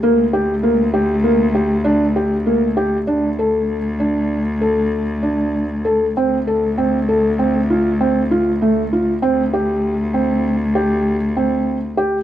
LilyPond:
<<
  \new Staff \with { instrumentName = "Felt piano" } { \time 5/4 \key d \minor \tempo 4 = 98 bes8 g'8 bes8 g'8 bes8 g'8 d'8 g'8 bes8 g'8 | d'8 a'4 d'4 a'4 d'4 a'8 | c'8 a'8 c'8 a'8 c'8 f'8 c'8 f'8 a8 f'8 | c'8 g'4 c'4 g'4 c'4 g'8 | }
  \new Staff \with { instrumentName = "Cello" } { \clef bass \time 5/4 \key d \minor d,1~ d,4 | d,1~ d,4 | d,1~ d,4 | d,1~ d,4 | }
>>